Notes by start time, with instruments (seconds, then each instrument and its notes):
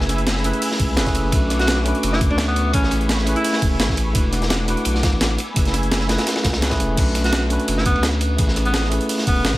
Already playing: sub bass F#1, tine electric piano A3 C#4 E4 G#4 B4, analog synth pad E5 G#5 B5 E6
0.00 snare
0.09 snare, closed hi-hat, ride
0.18 closed hi-hat
0.27 snare, closed hi-hat, ride
0.36 snare
0.42 tine electric piano A3 C#4 E4 G#4, closed hi-hat, ride
0.46 tine electric piano B4
0.53 closed hi-hat
0.62 closed hi-hat, open hi-hat
0.71 snare
0.80 sub bass C#2, kick, closed hi-hat, ride
0.96 sub bass F#1, tine electric piano A3 C#4 E4 G#4 B4, snare, closed hi-hat, ride
1.06 tine electric piano A3 C#4 E4 G#4 B4, kick, snare, closed hi-hat
1.15 closed hi-hat, ride
1.31 sub bass B1, tine electric piano A3 C#4 D4 F#4, analog synth pad C#6 D6, kick, closed hi-hat, ride
1.35 tine electric piano B4
1.50 snare, closed hi-hat, ride
1.59 alto saxophone F#4, snare, closed hi-hat
1.67 snare, closed hi-hat, ride
1.84 tine electric piano A3 C#4 D4 F#4, closed hi-hat, ride
1.88 tine electric piano B4
1.95 closed hi-hat
2.03 sub bass F#1, closed hi-hat, ride
2.12 alto saxophone E4, snare
2.21 kick, closed hi-hat, ride
2.30 sub bass D2, alto saxophone D4, ride
2.38 snare, closed hi-hat, ride
2.48 alto saxophone B3, ride
2.56 closed hi-hat, ride
2.72 sub bass A1, tine electric piano A3 C#4 E4 G#4, alto saxophone C#4, analog synth pad G#5 B5, kick, closed hi-hat, ride
2.76 tine electric piano B4
2.83 snare
2.91 snare, closed hi-hat, ride
3.01 closed hi-hat
3.09 snare, closed hi-hat, ride
3.18 snare
3.25 tine electric piano A3 C#4 E4 G#4, closed hi-hat, ride
3.29 tine electric piano B4
3.36 alto saxophone E4, closed hi-hat
3.44 closed hi-hat, open hi-hat
3.53 snare
3.62 sub bass E1, kick, closed hi-hat, ride
3.80 sub bass A1, snare, closed hi-hat, ride
3.89 kick, snare
3.97 closed hi-hat, ride
4.13 sub bass E1, tine electric piano A3 D4 E4 F#4, analog synth pad F#5 D6, kick, closed hi-hat, ride
4.17 tine electric piano B4
4.33 snare, closed hi-hat, ride
4.42 snare, closed hi-hat
4.50 snare, closed hi-hat, ride
4.66 tine electric piano A3 D4 E4 F#4, closed hi-hat, ride
4.70 tine electric piano B4
4.77 closed hi-hat
4.85 sub bass B1, closed hi-hat, ride
4.95 snare
5.03 kick, snare, closed hi-hat, ride
5.12 sub bass A1, ride
5.21 snare, closed hi-hat, ride
5.30 ride
5.38 analog synth pad G#5 B5 E6, closed hi-hat, ride
5.54 sub bass F#1, tine electric piano A3 C#4 E4 G#4, kick, closed hi-hat, ride
5.58 tine electric piano B4
5.65 snare, closed hi-hat
5.74 snare, closed hi-hat, ride
5.83 closed hi-hat
5.92 snare, closed hi-hat, ride
6.01 snare
6.07 tine electric piano A3 C#4 E4 G#4, snare, closed hi-hat, ride
6.11 tine electric piano B4
6.18 snare, closed hi-hat, ride
6.27 snare, closed hi-hat, ride
6.36 snare, ride
6.44 sub bass C#2, kick, snare, closed hi-hat, ride
6.53 snare, ride
6.61 tine electric piano A3 C#4 E4 G#4 B4, snare, closed hi-hat, ride
6.70 tine electric piano A3 C#4 E4 G#4 B4, kick, snare, closed hi-hat, ride
6.80 sub bass E1, closed hi-hat, ride
6.96 sub bass B1, tine electric piano A3 C#4 D4 F#4, kick, closed hi-hat, crash, ride
7.00 tine electric piano B4
7.15 snare, closed hi-hat, ride
7.24 alto saxophone F#4, snare, closed hi-hat
7.33 snare, closed hi-hat, ride
7.49 tine electric piano A3 C#4 D4 F#4, closed hi-hat, ride
7.53 tine electric piano B4
7.60 closed hi-hat
7.68 sub bass F#1, closed hi-hat, ride
7.77 alto saxophone E4, snare
7.86 alto saxophone B3, kick, closed hi-hat, ride
7.95 sub bass D2, ride
8.03 snare, closed hi-hat, ride
8.13 ride
8.21 closed hi-hat, ride
8.37 sub bass A1, tine electric piano A3 C#4 E4 G#4, kick, closed hi-hat, ride
8.41 tine electric piano B4
8.48 snare
8.56 snare, closed hi-hat, ride
8.65 alto saxophone B3, closed hi-hat
8.74 snare, closed hi-hat, ride
8.84 snare
8.89 tine electric piano A3 C#4 E4 G#4, closed hi-hat, ride
8.94 tine electric piano B4
9.01 closed hi-hat
9.09 closed hi-hat, open hi-hat
9.18 snare
9.27 sub bass E1, alto saxophone B3, kick, closed hi-hat, ride
9.45 sub bass A1, snare, closed hi-hat, ride
9.53 kick, snare